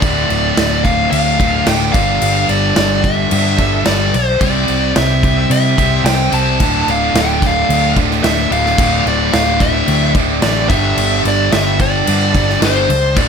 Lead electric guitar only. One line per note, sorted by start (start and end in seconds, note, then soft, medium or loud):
0.00 0.86 D5 loud
0.84 1.09 F5 medium
1.11 1.67 F5 medium
1.68 1.92 G5 loud
1.92 2.50 F5 medium
2.49 3.06 D5 medium
3.04 3.89 E5 loud
3.87 4.15 D5 medium
4.15 4.41 C5 medium
4.41 4.92 D5 loud
4.97 5.50 E5 medium
5.52 6.05 E5 loud
6.05 6.33 G5 loud
6.34 6.89 A5 loud
6.91 7.17 F5 loud
7.19 7.42 G5 loud
7.46 7.95 F5 medium
8.23 8.49 E5 loud
8.52 9.03 F5 loud
9.08 9.33 D5 medium
9.33 9.61 F5 loud
9.61 10.12 E5 medium
10.42 10.69 D5 medium
10.69 11.21 E5 loud
11.28 11.52 D5 loud
11.53 11.78 E5 loud
11.81 12.59 D5 loud
12.65 13.15 C5 medium
13.18 13.28 D5 loud